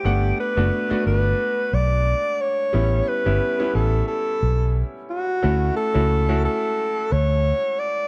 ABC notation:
X:1
M:4/4
L:1/16
Q:"Swing 16ths" 1/4=89
K:Glyd
V:1 name="Alto saxophone"
G2 B4 B4 d4 c2- | c2 B4 A2 A4 z2 F2- | F2 A4 A4 c4 d2 |]
V:2 name="Grand piano"
[A,B,Df]2 z [A,B,DF] z [A,B,DF]6 z4 z | [G,B,CE]2 z [G,B,CE] z [G,B,CE]6 z4 z | [A,CEF]2 z [A,CEF] z [A,CEF]6 z4 z |]
V:3 name="Fingered electric bass" clef=bass
G,,,2 z F,,, z2 G,,,2 z2 B,,,3 z3 | A,,,2 z G,,, z2 A,,,2 z2 B,,,3 z3 | D,,2 z C,,4 z3 D,,3 z3 |]